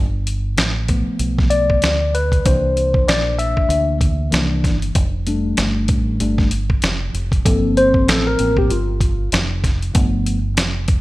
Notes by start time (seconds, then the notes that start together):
Already playing: G1
0.27 closed hi-hat
0.57 A1, snare, closed hi-hat
0.88 F3 A3 B3, kick, closed hi-hat
1.07 muted fingered electric bass stroke
1.19 B1, closed hi-hat
1.39 kick, snare
1.50 D5, closed hi-hat
1.70 kick
1.82 D2, snare, closed hi-hat
2.15 B4, closed hi-hat
2.32 kick, closed hi-hat
2.45 C2 E3 A#3 D4 C5, kick, closed hi-hat
2.77 closed hi-hat
2.94 kick
3.07 A#1 D5, snare, closed hi-hat
3.39 E5, closed hi-hat
3.57 kick
3.69 D2, closed hi-hat
4.01 kick, closed hi-hat
4.31 C2 E3 A#3 D4, snare, closed hi-hat
4.64 G1, kick, snare, closed hi-hat
4.82 closed hi-hat
4.95 F1, kick, closed hi-hat
5.27 G3 A3 D4, closed hi-hat
5.57 G1, snare, closed hi-hat
5.88 A1, kick, closed hi-hat
6.20 G1 G3 A3 D4, closed hi-hat
6.38 kick, snare
6.51 closed hi-hat
6.70 kick
6.82 F1, snare, closed hi-hat
7.13 F1, closed hi-hat
7.32 kick, closed hi-hat
7.45 G1 F3 A#3 C4 A4, kick, closed hi-hat
7.77 C5, closed hi-hat
7.94 kick
8.08 A1 A4, snare, closed hi-hat
8.27 A#4
8.38 A1 F3 A3 A#3 C4, closed hi-hat
8.57 G4, kick
8.69 G1 F4, closed hi-hat
9.01 kick, closed hi-hat
9.32 F1, snare, closed hi-hat
9.64 kick, snare, closed hi-hat
9.82 closed hi-hat
9.94 G1 F3 A3 B3, kick, closed hi-hat
10.26 closed hi-hat
10.56 F1, snare, closed hi-hat
10.88 kick, closed hi-hat